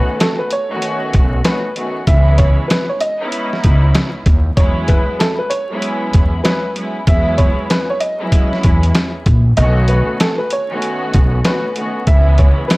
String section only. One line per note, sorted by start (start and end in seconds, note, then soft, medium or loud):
0.00 0.46 D#3 loud
0.00 0.46 A3 loud
0.00 0.46 B3 medium
0.00 0.47 C#4 medium
0.00 0.47 F#4 loud
0.69 1.40 D#3 medium
0.69 1.40 A3 medium
0.69 1.40 B3 medium
0.69 1.41 C#4 medium
0.69 1.41 F#4 loud
1.43 1.73 D#3 medium
1.43 1.73 A3 medium
1.43 1.74 B3 medium
1.43 1.75 C#4 medium
1.43 1.75 F#4 medium
1.74 2.04 D#3 medium
1.74 2.05 A3 medium
1.74 2.05 B3 medium
1.74 2.05 C#4 medium
1.74 2.06 F#4 medium
2.07 2.95 E3 loud
2.07 2.96 G#3 loud
2.07 2.96 B3 medium
2.07 2.96 C#4 loud
2.07 2.97 E4 loud
3.19 4.33 G#3 medium
3.19 4.33 B3 medium
3.19 4.34 C#4 loud
3.19 4.33 D#4 loud
3.19 4.34 E4 loud
4.56 5.45 F#3 loud
4.56 5.45 G#3 loud
4.56 5.46 B3 medium
4.56 5.46 C#4 medium
4.56 5.46 E4 loud
5.70 6.40 F#3 medium
5.70 6.40 G#3 medium
5.70 6.41 B3 medium
5.70 6.41 C#4 medium
5.70 6.41 E4 loud
6.43 6.73 F#3 medium
6.43 6.73 G#3 medium
6.43 6.74 B3 medium
6.43 6.74 C#4 medium
6.43 6.75 E4 medium
6.74 7.04 F#3 medium
6.74 7.04 G#3 medium
6.74 7.05 B3 medium
6.74 7.05 C#4 medium
6.74 7.06 E4 medium
7.05 7.94 F#3 loud
7.05 7.95 G#3 loud
7.05 7.95 B3 loud
7.05 7.95 C#4 medium
7.05 7.96 E4 loud
8.18 9.32 F#3 loud
8.18 9.32 G#3 medium
8.18 9.33 B3 medium
8.18 9.33 C#4 medium
8.18 9.33 E4 loud
9.58 10.46 D#3 loud
9.58 10.46 A3 loud
9.58 10.46 B3 medium
9.58 10.47 C#4 medium
9.58 10.47 F#4 loud
10.70 11.40 D#3 medium
10.70 11.40 A3 medium
10.70 11.40 B3 medium
10.70 11.41 C#4 medium
10.70 11.41 F#4 loud
11.43 11.73 D#3 medium
11.43 11.73 A3 medium
11.43 11.74 B3 medium
11.43 11.75 C#4 medium
11.43 11.75 F#4 medium
11.74 12.04 D#3 medium
11.74 12.05 A3 medium
11.74 12.05 B3 medium
11.74 12.05 C#4 medium
11.74 12.06 F#4 medium
12.07 12.77 E3 loud
12.07 12.77 G#3 loud
12.07 12.77 B3 medium
12.07 12.77 C#4 loud
12.07 12.77 E4 loud